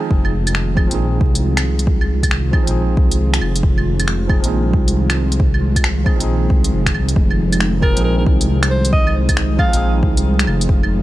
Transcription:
Already playing: F3 C4 D#4 G#4
0.11 F1 D#3 G#3 F4, kick
0.25 claves
0.47 closed hi-hat, claves
0.55 finger snap
0.75 F3 C4 D#4, kick, claves
0.79 G#4
0.87 F3 C4
0.91 A#1 D#4 G#4, closed hi-hat
1.21 C2, kick
1.35 closed hi-hat
1.57 finger snap, closed hi-hat, claves
1.79 closed hi-hat
1.87 kick
2.01 claves
2.23 kick, closed hi-hat, claves
2.31 finger snap
2.51 F3 C4 D#4 G#4, kick, claves
2.63 F3 C4
2.67 A#1 D#4 G#4, closed hi-hat
2.97 C2, kick
3.12 closed hi-hat
3.34 finger snap, closed hi-hat
3.41 F1, claves
3.56 closed hi-hat
3.63 F1, kick
3.78 claves
4.00 closed hi-hat, claves
4.08 finger snap
4.27 F3 C4 D#4 G#4, kick, claves
4.40 A#1 F3 C4
4.44 D#4, closed hi-hat
4.48 G#4
4.73 C2, kick
4.88 closed hi-hat
5.10 finger snap, closed hi-hat, claves
5.32 closed hi-hat
5.40 kick
5.54 claves
5.76 kick, closed hi-hat, claves
5.84 finger snap
6.04 F3 C4 D#4, kick, claves
6.08 G#4
6.16 F3 C4
6.20 A#1 D#4 G#4, closed hi-hat
6.50 C2, kick
6.64 closed hi-hat
6.72 F1
6.86 finger snap, kick, closed hi-hat
6.94 C2, claves
7.09 closed hi-hat
7.16 F1 D#4, kick
7.31 claves
7.52 closed hi-hat, claves
7.60 finger snap
7.80 F3 C4 D#4 G#4 A#4, kick, claves
7.92 F3 C4
7.97 A#1 D#4 G#4, closed hi-hat
8.04 A#4
8.18 A#4
8.26 C2, kick
8.41 closed hi-hat
8.63 finger snap, closed hi-hat, claves
8.70 C5
8.85 closed hi-hat
8.93 D#5, kick
9.07 claves
9.29 kick, closed hi-hat, claves
9.37 finger snap
9.57 F3 C4 D#4 G#4 F5, kick, claves
9.68 F3 C4
9.73 A#1 D#4 G#4, closed hi-hat
10.03 C2, kick
10.17 closed hi-hat
10.39 finger snap, closed hi-hat
10.47 F1, claves
10.61 closed hi-hat
10.69 F1, kick
10.83 claves

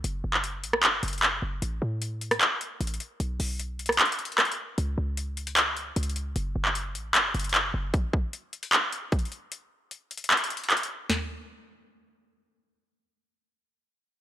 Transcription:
0.04 F#1, closed hi-hat
0.24 F#1
0.34 clap
0.44 closed hi-hat
0.63 A1, closed hi-hat
0.73 cross-stick
0.83 F#1, clap, closed hi-hat
1.03 F#1, closed hi-hat
1.08 closed hi-hat
1.13 closed hi-hat
1.18 closed hi-hat
1.23 clap, closed hi-hat
1.42 F#1
1.62 A1, closed hi-hat
1.82 A2
2.02 closed hi-hat
2.21 closed hi-hat
2.31 cross-stick, closed hi-hat
2.41 clap, closed hi-hat
2.61 closed hi-hat
2.81 A1, closed hi-hat
2.87 closed hi-hat
2.94 closed hi-hat
3.00 closed hi-hat
3.20 B1, closed hi-hat
3.40 B1, open hi-hat
3.60 closed hi-hat
3.79 closed hi-hat
3.86 cross-stick, closed hi-hat
3.92 closed hi-hat
3.99 clap, closed hi-hat
4.05 closed hi-hat
4.12 closed hi-hat
4.19 closed hi-hat
4.25 closed hi-hat
4.32 closed hi-hat
4.38 cross-stick, clap, closed hi-hat
4.45 closed hi-hat
4.52 closed hi-hat
4.78 C#2, closed hi-hat
4.98 C#2
5.17 closed hi-hat
5.37 closed hi-hat
5.47 closed hi-hat
5.57 clap, closed hi-hat
5.77 closed hi-hat
5.96 C#2, closed hi-hat
6.03 closed hi-hat
6.09 closed hi-hat
6.16 closed hi-hat
6.36 F#1, closed hi-hat
6.56 F#1
6.65 clap
6.75 closed hi-hat
6.95 A1, closed hi-hat
7.15 F#1, clap, closed hi-hat
7.34 F#1, closed hi-hat
7.39 closed hi-hat
7.44 closed hi-hat
7.49 closed hi-hat
7.54 clap, closed hi-hat
7.74 F#1
7.94 kick, closed hi-hat
8.13 kick
8.33 closed hi-hat
8.53 closed hi-hat
8.63 closed hi-hat
8.73 clap, closed hi-hat
8.92 closed hi-hat
9.12 kick, closed hi-hat
9.19 closed hi-hat
9.25 closed hi-hat
9.32 closed hi-hat
9.52 closed hi-hat
9.91 closed hi-hat
10.11 closed hi-hat
10.17 closed hi-hat
10.24 closed hi-hat
10.31 clap, closed hi-hat
10.37 closed hi-hat
10.44 closed hi-hat
10.50 closed hi-hat
10.57 closed hi-hat
10.64 closed hi-hat
10.70 clap, closed hi-hat
10.77 closed hi-hat
10.83 closed hi-hat
11.10 snare, floor tom

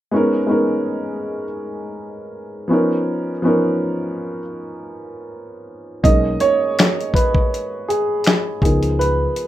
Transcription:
0.11 G#3 B3 C#4 D#4
0.16 A#4
0.47 G#3 B3 C#4 D#4
0.52 A#4
2.68 F3 B3 C#4
2.72 D#4 A#4
3.42 F3 B3 C#4 D#4
3.47 A#4
6.03 B1 G#3 A#3 C#4 D#4 D#5, kick, closed hi-hat
6.40 C#5, closed hi-hat
6.79 finger snap, snare, closed hi-hat
7.00 closed hi-hat
7.14 B4, kick, closed hi-hat
7.35 kick
7.54 closed hi-hat
7.88 G#4, closed hi-hat
8.24 finger snap, snare, closed hi-hat
8.62 C#2 F3 B3 D#4 G#4 A#4, kick, closed hi-hat
8.83 closed hi-hat
8.99 B4, closed hi-hat
9.36 closed hi-hat

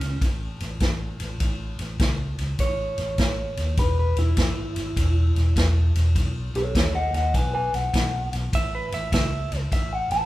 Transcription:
Already playing: C#4
0.00 C#2, snare, ride
0.21 A1, kick, snare, ride
0.60 A1, snare, ride
0.80 A1, kick, snare, ride
1.20 A1, snare, ride
1.40 A1, kick, snare, ride
1.79 A1, snare, ride
1.99 C#2, kick, snare, ride
2.38 C#2, snare, ride
2.59 A1 C#5, kick, snare, ride
2.98 A1, snare, ride
3.18 A1, kick, snare, ride
3.57 D#2, snare, ride
3.77 E1 B4, kick, snare, ride
3.99 B4
4.17 E1 E4, snare, ride
4.37 G#1, kick, snare, ride
4.76 G#1, snare, ride
4.96 E1, kick, snare, ride
5.35 E1, snare, ride
5.56 E1, kick, snare, ride
5.95 E1, snare, ride
6.15 B1, kick, snare, ride
6.54 B1 A4 C#5, snare, ride
6.75 D#2 A4 C#5, kick, snare, ride
6.95 D#5 F#5
7.13 D#2 D#5 F#5, snare, ride
7.34 B1 B4 G#5, kick, snare, ride
7.54 B4 G#5
7.73 B1 F#5, snare, ride
7.94 B1, kick, snare, ride
8.32 B1, snare, ride
8.53 A1 E5, kick, snare, ride
8.75 B4
8.92 A1 E5, snare, ride
9.12 C#2 E5, kick, snare, ride
9.51 C#2, snare, ride
9.72 A1 E5, kick, snare, ride
9.93 F#5
10.10 A1 A5, snare, ride

